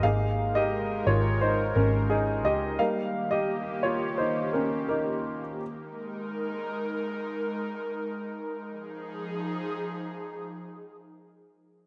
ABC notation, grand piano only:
X:1
M:4/4
L:1/16
Q:1/4=83
K:Fm
V:1 name="Grand piano"
[Af]3 [Ge]3 [Fd]2 [Ec]2 [DB]2 [EA]2 [Ge]2 | [Bf]3 [Ge]3 [Fd]2 [Ec]2 [DB]2 [EB]3 z | z16 | z16 |]
V:2 name="Grand piano"
[A,B,E]6 z8 z2 | [G,B,E]16 | z16 | z16 |]